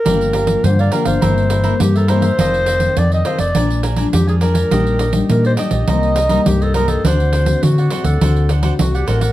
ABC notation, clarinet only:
X:1
M:4/4
L:1/16
Q:1/4=103
K:Gm
V:1 name="Clarinet"
B4 c d B c4- c G A c2- | c4 d e c d3 z2 G _A B2- | B4 B c e6 G A B A | c4 ^F3 A3 z2 F G B2 |]